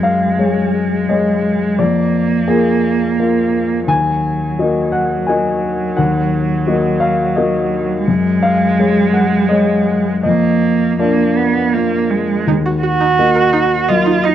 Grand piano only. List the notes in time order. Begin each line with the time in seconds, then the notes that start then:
Already playing: F#2
0.03 F5
0.38 G#3 G#4 C#5
1.09 G#3 G#4 C#5 D#5
1.79 F2 D5
2.48 A#3 F4 G#4 A#4
3.19 A#3 F4 A#4
3.88 D#2 G#5
4.59 A#3 F#4 D#5
4.92 F#5
5.26 A#3 F#4 D#5 G#5
5.97 D#2 F#5
6.67 A#3 F#4 D#5
7.00 F5
7.36 A#3 F#4 D#5
8.08 F#2
8.43 F5
8.79 G#3 G#4 C#5
9.13 F#5
9.49 G#3 G#4 C#5 D#5
10.23 F2 D#5
10.99 D4 F4 A#4 D5
11.74 A#3 F4 A#4
12.47 D#2
13.19 A#3 F#4 D#5
13.89 F#3 A#3 D#5